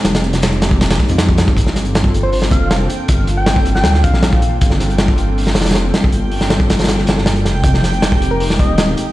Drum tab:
HH |x-x-x-x-x-x-x---xxxxo-x-x---x---|x---x-x-x---x---o---x---x---x---|x---x---x---x---x---x---x---x---|x---x-x-x---x---o---xxxxx---x---|
SD |o-o---o-o---o---ooooo-o-o---o-o-|--o-o---o---------o-----o-------|--------o-----o-o-o---o-o-------|--o-o---o---------o-ooooo---o---|
BD |--------------o-----o-----o---o-|o---------o---------o-----------|o---------o---------o-----o-----|o---------o-------------------o-|

HH |x---o---x---x-xxx---x---x-x-x---|x---x-x-x---x---o---x---x---x---|
SD |------o-o---o-ooo-o-o-o-o---o---|--o-o---o---------o-----o-------|
BD |----------o---------------------|o---------o---------o-----------|